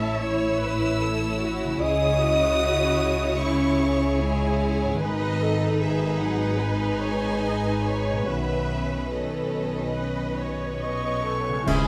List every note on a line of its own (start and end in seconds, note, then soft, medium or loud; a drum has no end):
0.00 1.79 A1 medium
0.00 1.77 A2 medium
0.00 1.79 A2 soft
0.00 0.18 A3 medium
0.00 1.68 C#4 soft
0.00 1.72 E4 soft
0.00 4.99 E4 medium
0.00 1.83 A4 soft
0.00 1.78 C#5 soft
0.00 0.22 E5 medium
0.00 0.18 A5 loud
0.21 1.83 E4 medium
0.21 0.62 C#5 medium
0.21 1.82 E6 medium
0.62 1.03 B4 medium
1.02 1.42 A4 medium
1.41 1.82 F#4 medium
1.64 4.96 C#3 medium
1.69 4.98 C#4 soft
1.74 5.01 E4 soft
1.78 4.96 G#4 soft
1.78 2.22 G#4 medium
1.78 3.42 D#5 medium
1.82 4.98 C#2 medium
1.82 4.98 C#3 medium
1.82 4.98 C#5 medium
1.82 3.39 D#6 loud
2.21 3.42 F#4 medium
3.41 4.20 C#4 medium
3.41 3.82 E4 medium
3.41 4.22 C#6 medium
3.82 5.02 G#4 medium
4.21 5.01 G#3 medium
4.21 5.01 G#5 medium
4.84 8.23 G#2 medium
4.88 8.14 B3 soft
4.93 8.83 D#3 soft
4.98 5.80 D#3 medium
4.98 8.29 G#4 soft
4.98 5.81 D#5 loud
5.02 8.24 G#1 medium
5.02 8.24 G#2 medium
5.02 8.25 D#4 medium
5.02 5.42 B4 medium
5.02 11.43 B4 medium
5.42 5.82 A4 medium
5.81 6.22 D#3 medium
5.81 6.62 G#4 medium
5.81 6.21 E5 medium
6.21 6.62 F#3 medium
6.21 6.62 F#5 medium
6.61 8.28 G#3 medium
6.61 7.02 B4 medium
6.61 8.28 G#5 medium
7.02 7.44 C#5 medium
7.45 7.85 D#5 medium
7.86 8.28 C#5 medium
8.10 11.62 B2 soft
8.15 11.64 B3 soft
8.20 11.57 C#4 soft
8.24 11.68 F#4 soft
8.24 9.11 E5 medium
8.28 11.43 B1 medium
8.28 11.43 B2 soft
8.28 8.97 D#3 medium
8.28 11.48 C#4 soft
8.28 9.05 B4 medium
9.13 10.80 D#3 soft
9.13 9.93 A4 medium
9.13 10.83 D#5 medium
9.97 10.40 B4 soft
10.40 10.83 C#5 soft
10.82 11.70 C#5 medium
10.82 11.25 D#5 medium
10.82 11.63 C#6 medium
11.26 11.67 A4 soft
11.49 11.88 C#3 medium
11.53 11.88 G#3 medium
11.58 11.88 C#4 soft
11.62 11.88 C#3 medium
11.62 11.88 E4 medium
11.62 11.76 E5 medium
11.67 11.88 C#2 medium
11.67 11.88 G#3 medium
11.67 11.88 C#4 medium
11.67 11.83 C#4 medium
11.67 11.88 C#4 medium
11.67 11.88 E4 medium
11.67 11.88 G#4 medium
11.67 11.88 G#5 loud
11.67 concert bass drum medium
11.67 crash medium